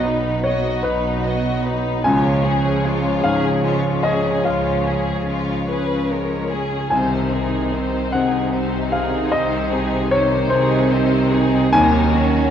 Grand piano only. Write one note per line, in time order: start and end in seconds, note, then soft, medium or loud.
0.00 2.05 F#2 soft
0.00 0.41 D#5 soft
0.44 0.80 C#5 medium
0.83 2.01 B4 medium
2.04 4.41 C#2 soft
2.04 3.19 G#5 medium
3.24 6.92 G#2 soft
3.24 4.00 F5 medium
4.03 4.41 D#5 medium
4.45 5.66 F5 medium
6.90 9.28 C2 soft
6.90 8.09 G#5 medium
8.12 11.73 C3 soft
8.12 8.88 F#5 medium
8.92 9.29 F5 medium
9.31 10.06 D#5 medium
10.11 10.48 C#5 medium
10.50 11.69 C5 medium
11.73 12.50 D#2 medium
11.73 12.50 G#5 medium